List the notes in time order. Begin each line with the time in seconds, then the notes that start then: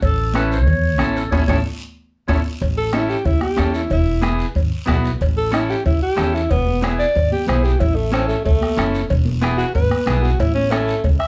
0.01 A1 A4, bombo low, cowbell, high conga, long guiro
0.34 C#4 E4 A4 B4, bombo rim, high conga, short guiro
0.52 C#5, short guiro
0.67 E2, bombo low, cowbell, high conga, long guiro
0.98 A1 C#4 E4 A4, bombo rim, high conga, short guiro
1.16 A4, short guiro
1.31 A1 C#4 E4 A4 C#5, bombo low, high conga, high timbale, long guiro
1.47 A1 C#4 E4 A4 C#5, bombo low, high conga, high timbale, long guiro
2.28 A1 C#4 E4 A4 C#5, bombo low, high conga, high timbale, long guiro
2.61 A1, bombo low, cowbell, high conga, long guiro
2.78 A4
2.93 C#4 E4 A4, bombo rim, high conga, short guiro
3.09 G4, short guiro
3.25 C#2 E4, bombo low, cowbell, high conga, long guiro
3.41 G4, bombo rim, high conga
3.57 E2 C#4 E4 A4, bombo rim, high conga, low timbale, short guiro
3.74 E4, short guiro
3.90 E1 E4, bombo low, cowbell, high conga, long guiro
4.21 B3 E4 G#4, bombo rim, high conga, short guiro
4.39 short guiro
4.55 G#1, bombo low, cowbell, high conga, long guiro
4.86 B1 B3 E4 F#4, bombo low, bombo rim, high conga, low conga, low timbale, short guiro
5.04 short guiro
5.19 A1, bombo low, cowbell, high conga, long guiro
5.37 A4
5.51 C#4 E4 A4, bombo rim, high conga, short guiro
5.70 G4, short guiro
5.84 C#2 E4, bombo low, cowbell, high conga, long guiro
6.02 G4
6.16 E2 C#4 E4 A4, bombo rim, high conga, low timbale, short guiro
6.34 E4, short guiro
6.50 E1 B3, bombo low, cowbell, high conga, long guiro
6.66 high conga
6.82 B3 E4 G#4, bombo rim, high conga, short guiro
6.99 D5, short guiro
7.15 G#1, bombo low, cowbell, high conga, long guiro
7.32 G4, high conga
7.47 B1 B3 E4 G#4 C5, bombo rim, high conga, low conga, short guiro
7.64 G4, short guiro
7.80 A1 E4, bombo low, cowbell, high conga, long guiro
7.95 A3
8.12 C4 C#4 E4 A4, bombo rim, high conga, short guiro
8.28 A3, short guiro
8.45 C#2 A3, bombo low, cowbell, high conga, long guiro
8.61 bombo rim, high conga
8.77 F#1 C#4 E4 A4, bombo rim, high conga, short guiro
8.94 short guiro
9.10 E1, bombo low, cowbell, high conga, long guiro
9.25 high conga, low conga
9.41 B3 E4 G#4, bombo rim, high conga, short guiro
9.57 F#4, short guiro
9.75 G#1 B4, bombo low, cowbell, high conga, long guiro
9.90 bombo rim, high conga
10.06 B1 B3 E4 G#4, bombo rim, high conga, low conga, short guiro
10.23 F#4, short guiro
10.39 A1 E4, bombo low, cowbell, high conga, long guiro
10.54 C#4, high conga
10.71 A3 C#4 E4 A4, bombo rim, high conga, short guiro
10.88 short guiro
11.04 C#2, bombo low, cowbell, high conga, long guiro
11.19 E5, bombo rim